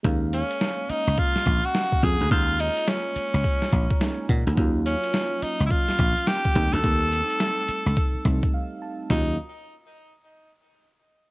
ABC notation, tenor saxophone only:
X:1
M:4/4
L:1/16
Q:"Swing 16ths" 1/4=106
K:Bbphr
V:1 name="Tenor saxophone"
z2 D4 E2 F3 G3 A2 | F2 E2 D8- D2 z2 | z2 D4 E3/2 _F/2 =F4 =G3 =A- | =A12 z4 |
E2 z12 z2 |]